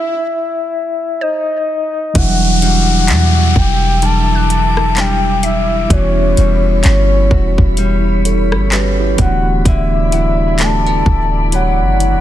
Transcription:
0.00 1.22 E5 loud
0.00 swell medium
1.21 2.58 C5 medium
1.21 2.19 D#5 loud
2.14 3.11 E1 loud
2.14 5.87 B2 medium
2.14 5.85 E3 medium
2.14 5.89 E3 medium
2.14 5.86 G3 medium
2.14 5.87 D4 medium
2.14 9.15 E4 medium
2.14 5.87 E5 medium
2.14 2.63 F#5 loud
2.14 5.87 D6 medium
2.14 kick loud
2.14 closed hi-hat medium
2.14 downlifter medium
2.18 2.24 E4 medium
2.25 5.91 F#3 medium
2.62 4.02 G3 medium
2.62 3.08 D4 medium
2.62 4.06 F#4 medium
2.62 3.60 F#5 loud
2.62 closed hi-hat medium
3.08 3.54 E2 loud
3.08 4.96 D4 medium
3.08 5.42 E5 medium
3.08 clap loud
3.08 closed hi-hat medium
3.56 5.87 E1 loud
3.56 4.07 G5 loud
3.56 kick loud
4.02 4.96 G3 medium
4.02 6.33 D4 medium
4.02 4.51 A5 loud
4.02 closed hi-hat medium
4.35 6.63 F#6 medium
4.50 5.01 A5 loud
4.50 closed hi-hat medium
4.77 cross-stick loud
4.96 6.37 G3 medium
4.96 6.02 D4 medium
4.96 5.45 G5 loud
4.96 clap loud
4.96 closed hi-hat medium
5.43 6.33 E5 medium
5.43 5.94 E5 loud
5.43 closed hi-hat medium
5.89 6.35 E1 loud
5.89 9.14 E3 medium
5.89 9.18 E3 medium
5.89 9.14 G3 medium
5.89 9.15 B3 medium
5.89 9.15 C#4 medium
5.89 9.15 C#5 medium
5.89 6.85 C#5 loud
5.89 12.21 B5 loud
5.89 kick loud
5.89 closed hi-hat medium
5.93 8.22 F#4 medium
6.37 6.83 E1 loud
6.37 7.77 G3 medium
6.37 6.83 C#4 medium
6.37 7.30 F#4 medium
6.37 closed hi-hat medium
6.84 7.30 G1 loud
6.84 8.71 C#4 medium
6.84 7.75 C#5 medium
6.84 clap loud
6.84 closed hi-hat medium
7.31 7.57 E1 loud
7.31 8.72 F#4 medium
7.31 kick loud
7.58 8.54 E1 loud
7.58 kick medium
7.77 8.70 G3 medium
7.77 closed hi-hat medium
8.25 8.70 A4 medium
8.25 8.70 C#5 medium
8.25 closed hi-hat medium
8.52 9.16 G1 loud
8.52 cross-stick loud
8.72 9.29 G3 medium
8.72 9.30 C#4 medium
8.72 10.13 F#4 medium
8.72 8.98 G4 medium
8.72 8.98 B4 medium
8.72 clap loud
8.72 closed hi-hat medium
8.99 9.44 E4 medium
8.99 9.44 G4 medium
9.17 9.64 D1 loud
9.17 9.65 D3 medium
9.17 12.21 E3 medium
9.17 12.21 A3 medium
9.17 12.21 B3 medium
9.17 12.21 D4 medium
9.17 12.21 E4 medium
9.17 12.21 D5 medium
9.17 9.63 F#5 loud
9.17 kick medium
9.17 closed hi-hat medium
9.21 12.21 F#4 medium
9.65 11.02 D1 loud
9.65 12.21 D3 medium
9.65 10.64 E5 loud
9.65 kick loud
9.65 closed hi-hat medium
10.12 11.52 F#3 medium
10.12 10.59 B3 medium
10.12 11.05 E4 medium
10.12 12.21 F#5 medium
10.12 closed hi-hat medium
10.59 10.86 A3 medium
10.59 11.54 A5 loud
10.59 clap loud
10.59 closed hi-hat medium
10.86 12.21 B3 medium
11.06 11.82 D1 loud
11.06 12.21 E4 medium
11.06 kick loud
11.52 12.21 F#3 medium
11.52 12.21 F#5 loud
11.52 closed hi-hat medium
11.81 12.16 F#1 loud
12.00 closed hi-hat medium
12.14 12.21 D1 loud

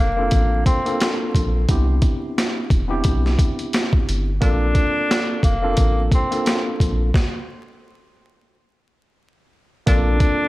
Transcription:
0.00 0.29 F1 medium
0.00 0.63 A#3 medium
0.17 0.79 A#3 medium
0.17 0.79 C4 medium
0.17 0.80 D4 medium
0.17 0.80 F4 medium
0.17 0.80 A4 loud
0.31 0.63 A1 loud
0.31 kick medium
0.31 closed hi-hat medium
0.66 1.17 C4 medium
0.66 kick medium
0.66 closed hi-hat medium
0.85 1.63 A#3 medium
0.85 1.63 C4 medium
0.85 1.63 D4 medium
0.85 1.64 F4 medium
0.85 1.64 A4 loud
0.85 closed hi-hat soft
1.00 snare loud
1.00 closed hi-hat medium
1.35 1.66 A#1 medium
1.35 kick medium
1.35 closed hi-hat medium
1.69 2.00 C2 loud
1.69 2.80 B3 medium
1.69 2.80 C4 medium
1.69 2.80 D4 medium
1.69 2.81 E4 medium
1.69 2.81 G4 loud
1.69 kick loud
1.69 closed hi-hat medium
2.02 kick medium
2.02 closed hi-hat medium
2.38 snare loud
2.38 closed hi-hat medium
2.70 3.02 E1 medium
2.70 kick medium
2.70 closed hi-hat medium
2.88 4.30 B3 medium
2.88 4.30 C4 medium
2.88 4.30 D4 medium
2.88 4.31 E4 medium
2.88 4.31 G4 loud
3.04 3.36 B1 medium
3.04 kick medium
3.04 closed hi-hat loud
3.26 snare soft
3.39 kick medium
3.39 closed hi-hat medium
3.59 closed hi-hat soft
3.73 snare loud
3.73 closed hi-hat medium
3.93 kick medium
4.08 4.39 G1 medium
4.08 closed hi-hat medium
4.41 4.73 A#1 loud
4.41 5.52 A#3 medium
4.41 5.52 C4 medium
4.41 5.40 D4 loud
4.41 5.53 D4 medium
4.41 5.53 F4 medium
4.41 5.53 A4 loud
4.41 kick loud
4.41 closed hi-hat medium
4.75 kick medium
4.75 closed hi-hat medium
5.11 snare loud
5.11 closed hi-hat medium
5.43 5.75 F1 medium
5.43 6.08 A#3 medium
5.43 kick medium
5.43 closed hi-hat medium
5.62 6.25 A#3 loud
5.62 6.25 C4 medium
5.62 6.25 D4 medium
5.62 6.26 F4 medium
5.62 6.26 A4 loud
5.77 6.09 A1 loud
5.77 kick medium
5.77 closed hi-hat loud
6.12 6.64 C4 medium
6.12 kick medium
6.12 closed hi-hat medium
6.31 7.08 A#3 medium
6.31 7.08 C4 medium
6.31 7.09 D4 medium
6.31 7.09 F4 medium
6.31 7.09 A4 loud
6.31 closed hi-hat soft
6.46 snare loud
6.46 closed hi-hat medium
6.80 7.11 A#1 medium
6.80 kick medium
6.80 closed hi-hat medium
7.14 kick loud
7.14 snare medium
9.86 10.18 A#1 loud
9.86 10.48 A#3 loud
9.86 10.48 C4 medium
9.86 10.48 D4 medium
9.86 10.48 D4 loud
9.86 10.48 F4 medium
9.86 10.48 A4 loud
9.86 kick loud
9.86 closed hi-hat loud
10.20 kick loud
10.20 closed hi-hat medium

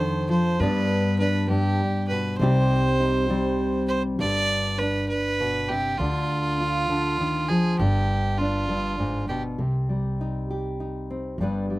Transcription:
0.00 0.57 F2 medium
0.00 0.30 D#3 medium
0.00 0.28 F3 medium
0.00 0.57 A4 medium
0.00 0.27 C5 loud
0.29 0.60 F3 medium
0.29 0.62 C5 loud
0.60 2.36 G2 medium
0.60 1.49 G2 medium
0.60 2.41 G3 medium
0.60 2.37 B3 medium
0.60 1.20 D4 medium
0.60 1.18 B4 loud
0.60 2.38 B4 medium
1.19 2.41 D4 medium
1.19 1.47 B4 medium
1.49 1.80 G2 medium
1.49 2.06 G4 loud
2.08 2.40 B2 medium
2.08 2.37 B4 medium
2.38 4.16 C2 medium
2.38 4.20 C3 medium
2.38 3.29 G3 medium
2.38 3.85 C5 loud
2.42 3.29 C4 medium
2.42 2.99 D#4 medium
2.42 6.01 G4 medium
3.00 4.16 D#4 medium
3.30 4.16 G3 medium
3.30 4.16 C4 medium
3.88 4.02 C5 loud
4.19 5.95 G1 medium
4.19 5.09 G2 medium
4.19 4.80 D5 loud
4.79 6.60 D4 medium
4.79 5.08 B4 loud
5.09 5.70 B4 loud
5.40 5.70 B2 medium
5.69 5.99 C3 medium
5.69 5.99 G4 loud
5.98 7.75 D2 medium
5.98 6.88 D3 medium
5.98 7.50 F4 loud
6.60 7.76 F4 medium
6.90 7.19 D3 medium
7.20 7.50 D#3 medium
7.49 7.79 F3 medium
7.49 7.79 G#4 loud
7.78 9.55 G1 medium
7.78 8.68 G2 medium
7.78 8.39 G4 loud
8.38 9.60 D4 medium
8.38 9.28 F4 loud
8.69 8.99 G2 medium
8.99 9.29 G#2 medium
9.29 9.59 B2 medium
9.29 9.42 G4 medium
9.58 11.35 C2 medium
9.58 11.39 C3 medium
9.89 11.36 G3 medium
10.21 10.79 D#4 soft
10.51 11.40 G4 soft
10.80 11.36 D#4 soft
11.10 11.36 C4 soft
11.38 11.79 G1 medium
11.38 11.79 G2 medium
11.38 11.69 G3 soft
11.38 11.79 B3 medium
11.43 11.79 D4 medium
11.43 11.79 B4 medium
11.70 11.79 G3 soft

